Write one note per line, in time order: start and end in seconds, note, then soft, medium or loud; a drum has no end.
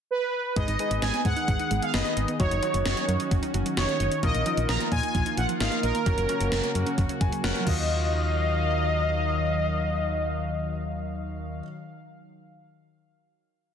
0.11 0.58 B4 loud
0.56 0.65 G#1 loud
0.56 6.02 D#3 medium
0.56 0.65 G#3 medium
0.56 2.38 B3 medium
0.56 0.74 D#4 medium
0.56 0.74 G#4 medium
0.56 2.38 G#4 medium
0.56 0.74 B4 medium
0.56 1.03 D#5 loud
0.56 kick loud
0.56 closed hi-hat medium
0.68 0.77 G#1 loud
0.68 0.77 D#4 medium
0.68 closed hi-hat medium
0.79 0.88 G#3 medium
0.79 1.49 D#4 medium
0.79 1.49 G#4 medium
0.79 1.49 B4 medium
0.79 closed hi-hat medium
0.91 1.00 G#1 medium
0.91 closed hi-hat medium
1.02 1.11 G#1 loud
1.02 1.11 G#3 medium
1.02 1.23 G#5 loud
1.02 snare loud
1.02 closed hi-hat medium
1.14 1.22 B3 medium
1.14 closed hi-hat medium
1.24 1.34 G#2 loud
1.24 1.34 G#3 medium
1.24 1.84 F#5 loud
1.24 kick loud
1.24 closed hi-hat medium
1.36 1.45 D#4 medium
1.36 closed hi-hat soft
1.48 1.57 G#1 loud
1.48 1.57 G#3 medium
1.48 kick loud
1.48 closed hi-hat medium
1.59 1.68 D#4 medium
1.59 closed hi-hat medium
1.71 1.80 G#1 loud
1.71 1.80 G#3 medium
1.71 closed hi-hat medium
1.82 1.91 G#3 medium
1.82 1.93 F5 medium
1.82 closed hi-hat medium
1.93 2.03 F#1 medium
1.93 2.29 D#4 medium
1.93 2.29 G#4 medium
1.93 2.29 B4 medium
1.93 2.36 D#5 loud
1.93 snare loud
1.93 closed hi-hat medium
2.05 2.14 B3 medium
2.05 closed hi-hat soft
2.17 2.26 G#1 medium
2.17 2.26 D#5 medium
2.17 closed hi-hat medium
2.28 2.37 B3 medium
2.28 closed hi-hat medium
2.39 2.49 F#1 loud
2.39 2.49 F#3 medium
2.39 4.21 C#4 medium
2.39 2.57 D#4 medium
2.39 4.21 F#4 medium
2.39 2.57 F#4 medium
2.39 2.84 C#5 loud
2.39 2.57 C#5 medium
2.39 kick loud
2.39 closed hi-hat medium
2.51 2.60 F#1 medium
2.51 2.60 D#4 medium
2.51 closed hi-hat medium
2.63 2.71 F#3 medium
2.63 3.32 D#4 medium
2.63 3.32 F#4 medium
2.63 3.32 C#5 medium
2.63 closed hi-hat medium
2.74 2.83 F#1 loud
2.74 closed hi-hat medium
2.85 2.95 F#1 loud
2.85 2.94 F#3 medium
2.85 3.28 C#5 medium
2.85 snare loud
2.85 closed hi-hat medium
2.97 3.06 C#4 medium
2.97 closed hi-hat medium
3.08 3.17 F#2 loud
3.08 3.17 F#3 medium
3.08 closed hi-hat medium
3.20 3.29 D#4 medium
3.20 closed hi-hat medium
3.31 3.40 F#1 loud
3.31 3.40 F#3 medium
3.31 kick loud
3.31 closed hi-hat medium
3.43 3.51 D#4 medium
3.43 closed hi-hat medium
3.54 3.63 F#1 loud
3.54 3.63 F#3 medium
3.54 closed hi-hat medium
3.66 3.74 F#3 medium
3.66 closed hi-hat medium
3.77 3.86 F1 loud
3.77 4.12 D#4 medium
3.77 4.12 F#4 medium
3.77 4.20 C#5 loud
3.77 4.12 C#5 medium
3.77 snare loud
3.77 closed hi-hat medium
3.88 3.97 C#4 medium
3.88 closed hi-hat soft
4.00 4.09 F#1 loud
4.00 4.09 D#5 medium
4.00 closed hi-hat medium
4.11 4.20 C#4 medium
4.11 closed hi-hat medium
4.23 4.32 A#1 loud
4.23 4.32 F3 medium
4.23 7.63 A#3 medium
4.23 4.41 D#4 medium
4.23 6.04 F4 medium
4.23 4.41 F4 medium
4.23 4.41 A#4 medium
4.23 4.70 D#5 loud
4.23 kick loud
4.23 closed hi-hat medium
4.34 4.43 A#1 medium
4.34 4.43 D#4 medium
4.34 closed hi-hat medium
4.46 4.55 F3 medium
4.46 5.16 D#4 medium
4.46 5.16 F4 medium
4.46 5.16 A#4 medium
4.46 closed hi-hat medium
4.57 4.66 A#1 loud
4.57 closed hi-hat medium
4.69 4.78 A#1 loud
4.69 4.78 F3 medium
4.69 4.79 A#5 loud
4.69 snare loud
4.69 closed hi-hat medium
4.80 4.89 A#3 medium
4.80 closed hi-hat medium
4.91 5.01 A#2 loud
4.91 5.00 F3 medium
4.91 5.34 G#5 loud
4.91 kick medium
4.91 closed hi-hat medium
5.03 5.12 D#4 medium
5.03 closed hi-hat medium
5.15 5.24 A#1 loud
5.15 5.23 F3 medium
5.15 kick medium
5.15 closed hi-hat medium
5.26 5.35 D#4 medium
5.26 closed hi-hat medium
5.37 5.46 A#1 loud
5.37 5.46 F3 medium
5.37 5.47 F#5 loud
5.37 closed hi-hat medium
5.49 5.58 F3 medium
5.49 closed hi-hat medium
5.60 5.69 G#1 medium
5.60 5.95 D#4 medium
5.60 5.95 F4 medium
5.60 5.95 A#4 medium
5.60 5.84 F5 loud
5.60 snare loud
5.60 closed hi-hat medium
5.72 5.81 A#3 medium
5.72 closed hi-hat soft
5.83 5.92 A#1 medium
5.83 7.39 A#4 loud
5.83 5.92 D#5 medium
5.83 closed hi-hat medium
5.95 6.04 A#3 medium
5.95 closed hi-hat medium
6.06 6.15 F#1 loud
6.06 7.65 C#3 medium
6.06 6.15 F#3 medium
6.06 6.24 C#4 medium
6.06 7.65 F#4 medium
6.06 6.24 F#4 medium
6.06 6.24 A#4 medium
6.06 kick loud
6.06 closed hi-hat medium
6.18 6.27 F#1 loud
6.18 6.26 C#4 medium
6.18 closed hi-hat medium
6.29 6.38 F#3 medium
6.29 6.99 C#4 medium
6.29 6.99 F#4 medium
6.29 6.99 A#4 medium
6.29 closed hi-hat medium
6.41 6.50 F#1 medium
6.41 closed hi-hat medium
6.52 6.61 F#1 loud
6.52 6.61 F#3 medium
6.52 snare loud
6.52 closed hi-hat medium
6.64 6.72 A#3 medium
6.64 closed hi-hat medium
6.75 6.84 F#2 loud
6.75 6.84 F#3 medium
6.75 closed hi-hat medium
6.86 6.95 C#4 medium
6.86 closed hi-hat soft
6.98 7.07 F#1 loud
6.98 7.07 F#3 medium
6.98 kick loud
6.98 closed hi-hat medium
7.09 7.18 C#4 medium
7.09 closed hi-hat medium
7.21 7.30 F#1 loud
7.21 7.29 F#3 medium
7.21 7.42 G#5 medium
7.21 kick medium
7.21 closed hi-hat medium
7.32 7.41 F#3 medium
7.32 closed hi-hat medium
7.44 7.53 F1 medium
7.44 7.67 C#4 medium
7.44 7.65 F#4 medium
7.44 7.67 A#4 medium
7.44 7.65 F#5 medium
7.44 snare loud
7.44 closed hi-hat medium
7.55 7.64 A#3 medium
7.55 closed hi-hat soft
7.60 11.55 F#3 medium
7.65 11.62 D#2 loud
7.65 11.62 D#3 medium
7.65 11.62 F#3 medium
7.65 11.61 D#4 medium
7.65 11.60 F4 medium
7.65 11.62 F#4 medium
7.65 11.62 D#5 loud
7.65 11.62 F5 medium
7.65 kick loud
7.65 crash medium
7.69 11.67 F4 medium
7.69 11.64 D#5 medium